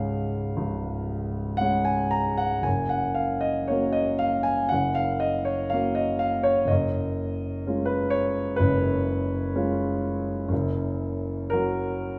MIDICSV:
0, 0, Header, 1, 2, 480
1, 0, Start_track
1, 0, Key_signature, 6, "major"
1, 0, Tempo, 1036269
1, 1229, Time_signature, 4, 2, 24, 8
1, 1710, Tempo, 1011804
1, 2670, Tempo, 958466
1, 5070, Tempo, 1001669
1, 5550, Tempo, 1094891
1, 5848, End_track
2, 0, Start_track
2, 0, Title_t, "Grand piano"
2, 0, Program_c, 0, 0
2, 0, Control_c, 0, 64, 127
2, 0, Note_on_c, 0, 25, 48
2, 0, Note_on_c, 0, 37, 54
2, 0, Note_on_c, 0, 56, 40
2, 0, Note_on_c, 0, 61, 39
2, 0, Note_on_c, 0, 68, 45
2, 0, Note_on_c, 0, 77, 74
2, 0, Note_on_c, 0, 78, 79
2, 231, Note_off_c, 0, 25, 0
2, 237, Note_off_c, 0, 37, 0
2, 245, Note_off_c, 0, 56, 0
2, 247, Note_off_c, 0, 61, 0
2, 247, Note_off_c, 0, 68, 0
2, 263, Note_on_c, 0, 37, 48
2, 264, Note_on_c, 0, 25, 48
2, 728, Note_off_c, 0, 78, 0
2, 728, Note_on_c, 0, 78, 82
2, 734, Note_off_c, 0, 77, 0
2, 742, Note_on_c, 0, 56, 42
2, 745, Note_on_c, 0, 61, 41
2, 747, Note_on_c, 0, 68, 45
2, 856, Note_off_c, 0, 78, 0
2, 856, Note_on_c, 0, 80, 69
2, 976, Note_on_c, 0, 82, 76
2, 982, Note_off_c, 0, 80, 0
2, 1100, Note_on_c, 0, 78, 73
2, 1103, Note_off_c, 0, 82, 0
2, 1211, Note_off_c, 0, 25, 0
2, 1211, Note_off_c, 0, 37, 0
2, 1212, Note_off_c, 0, 56, 0
2, 1213, Note_off_c, 0, 61, 0
2, 1214, Note_on_c, 0, 30, 41
2, 1215, Note_off_c, 0, 68, 0
2, 1219, Note_on_c, 0, 80, 68
2, 1225, Note_off_c, 0, 78, 0
2, 1234, Note_on_c, 0, 42, 44
2, 1238, Control_c, 0, 64, 0
2, 1308, Control_c, 0, 64, 127
2, 1340, Note_on_c, 0, 78, 64
2, 1344, Note_off_c, 0, 80, 0
2, 1457, Note_on_c, 0, 77, 66
2, 1465, Note_off_c, 0, 78, 0
2, 1578, Note_on_c, 0, 75, 71
2, 1584, Note_off_c, 0, 77, 0
2, 1703, Note_on_c, 0, 73, 59
2, 1704, Note_off_c, 0, 75, 0
2, 1714, Note_on_c, 0, 58, 39
2, 1719, Note_on_c, 0, 61, 41
2, 1720, Note_on_c, 0, 66, 38
2, 1821, Note_on_c, 0, 75, 69
2, 1829, Note_off_c, 0, 73, 0
2, 1945, Note_on_c, 0, 77, 79
2, 1948, Note_off_c, 0, 75, 0
2, 2061, Note_on_c, 0, 80, 74
2, 2070, Note_off_c, 0, 77, 0
2, 2168, Note_off_c, 0, 30, 0
2, 2177, Note_off_c, 0, 58, 0
2, 2178, Note_off_c, 0, 42, 0
2, 2180, Note_off_c, 0, 61, 0
2, 2181, Note_off_c, 0, 66, 0
2, 2182, Note_on_c, 0, 78, 76
2, 2188, Note_off_c, 0, 80, 0
2, 2199, Note_on_c, 0, 30, 43
2, 2199, Note_on_c, 0, 42, 43
2, 2203, Control_c, 0, 64, 0
2, 2287, Control_c, 0, 64, 127
2, 2306, Note_on_c, 0, 77, 77
2, 2307, Note_off_c, 0, 78, 0
2, 2425, Note_on_c, 0, 75, 69
2, 2429, Note_off_c, 0, 77, 0
2, 2543, Note_on_c, 0, 73, 65
2, 2548, Note_off_c, 0, 75, 0
2, 2661, Note_on_c, 0, 77, 75
2, 2666, Note_off_c, 0, 73, 0
2, 2679, Note_on_c, 0, 58, 40
2, 2679, Note_on_c, 0, 61, 39
2, 2681, Note_on_c, 0, 66, 44
2, 2787, Note_on_c, 0, 75, 66
2, 2790, Note_off_c, 0, 77, 0
2, 2908, Note_on_c, 0, 77, 78
2, 2914, Note_off_c, 0, 75, 0
2, 3029, Note_on_c, 0, 73, 72
2, 3035, Note_off_c, 0, 77, 0
2, 3133, Note_off_c, 0, 30, 0
2, 3140, Note_on_c, 0, 30, 40
2, 3143, Note_off_c, 0, 42, 0
2, 3145, Note_off_c, 0, 58, 0
2, 3146, Note_off_c, 0, 61, 0
2, 3146, Note_off_c, 0, 66, 0
2, 3152, Note_on_c, 0, 75, 65
2, 3156, Note_off_c, 0, 73, 0
2, 3169, Control_c, 0, 64, 0
2, 3169, Note_on_c, 0, 42, 53
2, 3241, Control_c, 0, 64, 127
2, 3649, Note_on_c, 0, 56, 39
2, 3649, Note_on_c, 0, 61, 40
2, 3651, Note_on_c, 0, 65, 43
2, 3742, Note_on_c, 0, 71, 70
2, 3751, Note_off_c, 0, 75, 0
2, 3866, Note_off_c, 0, 71, 0
2, 3866, Note_on_c, 0, 73, 81
2, 4078, Note_off_c, 0, 30, 0
2, 4092, Note_off_c, 0, 42, 0
2, 4093, Note_off_c, 0, 61, 0
2, 4094, Note_off_c, 0, 56, 0
2, 4095, Note_off_c, 0, 65, 0
2, 4096, Note_on_c, 0, 71, 80
2, 4105, Note_off_c, 0, 73, 0
2, 4110, Note_on_c, 0, 42, 48
2, 4113, Note_on_c, 0, 30, 56
2, 4591, Note_on_c, 0, 56, 48
2, 4594, Note_on_c, 0, 61, 47
2, 4596, Note_on_c, 0, 65, 51
2, 4826, Note_off_c, 0, 71, 0
2, 5051, Note_off_c, 0, 42, 0
2, 5053, Note_off_c, 0, 56, 0
2, 5054, Note_off_c, 0, 61, 0
2, 5055, Note_off_c, 0, 30, 0
2, 5055, Note_off_c, 0, 65, 0
2, 5058, Note_on_c, 0, 42, 54
2, 5079, Note_on_c, 0, 30, 55
2, 5081, Control_c, 0, 64, 0
2, 5144, Control_c, 0, 64, 127
2, 5545, Note_on_c, 0, 70, 78
2, 5560, Note_on_c, 0, 54, 44
2, 5561, Note_on_c, 0, 66, 50
2, 5562, Note_on_c, 0, 61, 42
2, 5848, Note_off_c, 0, 30, 0
2, 5848, Note_off_c, 0, 42, 0
2, 5848, Note_off_c, 0, 54, 0
2, 5848, Note_off_c, 0, 61, 0
2, 5848, Note_off_c, 0, 66, 0
2, 5848, Note_off_c, 0, 70, 0
2, 5848, End_track
0, 0, End_of_file